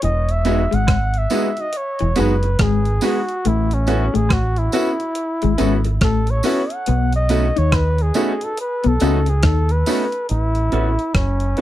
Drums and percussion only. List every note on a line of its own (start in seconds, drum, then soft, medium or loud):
0.02 closed hi-hat medium
0.29 closed hi-hat soft
0.45 closed hi-hat medium
0.45 tambourine soft
0.72 closed hi-hat soft
0.87 kick loud
0.87 cross-stick loud
0.87 closed hi-hat loud
0.87 high woodblock medium
1.14 closed hi-hat soft
1.30 closed hi-hat medium
1.30 tambourine medium
1.57 closed hi-hat soft
1.73 closed hi-hat medium
1.99 closed hi-hat soft
2.16 closed hi-hat medium
2.16 tambourine medium
2.43 closed hi-hat soft
2.59 kick loud
2.59 cross-stick loud
2.59 closed hi-hat loud
2.85 closed hi-hat medium
3.01 open hi-hat medium
3.01 tambourine medium
3.29 closed hi-hat soft
3.45 closed hi-hat medium
3.71 closed hi-hat soft
3.87 closed hi-hat medium
3.87 tambourine soft
4.15 closed hi-hat soft
4.29 kick loud
4.29 cross-stick loud
4.29 closed hi-hat loud
4.29 high woodblock medium
4.56 closed hi-hat soft
4.72 closed hi-hat medium
4.72 tambourine medium
5.00 closed hi-hat soft
5.15 closed hi-hat medium
5.42 closed hi-hat soft
5.58 closed hi-hat medium
5.58 tambourine medium
5.84 closed hi-hat soft
6.01 kick loud
6.01 cross-stick loud
6.01 closed hi-hat medium
6.27 closed hi-hat medium
6.43 open hi-hat medium
6.43 tambourine medium
6.70 closed hi-hat soft
6.86 closed hi-hat medium
7.12 closed hi-hat soft
7.29 closed hi-hat medium
7.29 tambourine soft
7.57 closed hi-hat soft
7.72 kick loud
7.72 cross-stick loud
7.72 closed hi-hat loud
7.72 high woodblock medium
7.98 closed hi-hat soft
8.14 closed hi-hat medium
8.14 tambourine medium
8.41 closed hi-hat soft
8.57 closed hi-hat loud
8.84 closed hi-hat soft
9.00 closed hi-hat medium
9.00 tambourine medium
9.26 closed hi-hat soft
9.43 kick loud
9.43 cross-stick loud
9.43 closed hi-hat loud
9.69 closed hi-hat medium
9.86 open hi-hat medium
9.86 tambourine medium
10.12 closed hi-hat medium
10.29 closed hi-hat medium
10.55 closed hi-hat soft
10.72 closed hi-hat medium
10.99 closed hi-hat soft
11.15 kick loud
11.15 cross-stick loud
11.15 closed hi-hat medium
11.40 closed hi-hat soft
11.57 closed hi-hat medium